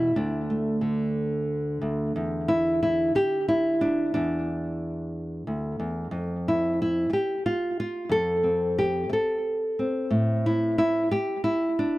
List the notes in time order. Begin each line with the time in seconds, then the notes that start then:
Already playing: E2 B2 E3 G3 E4
0.16 D2 D4
0.50 A3
0.81 D3
1.81 D2
2.16 E2
2.48 E4
2.83 E4
3.15 G4, muted nylon-string guitar stroke
3.48 E4
3.81 D4
4.14 E2 D4
5.47 D2
5.80 E2
6.11 F2
6.48 E4
6.82 E4
7.10 G4, muted nylon-string guitar stroke
7.46 F4
7.80 F4
8.09 F2 A4
8.43 C4
8.78 G4
9.09 A4, muted nylon-string guitar stroke
9.79 C4
10.11 A2
10.46 E4
10.78 E4
11.11 G4, muted nylon-string guitar stroke
11.44 E4
11.79 D4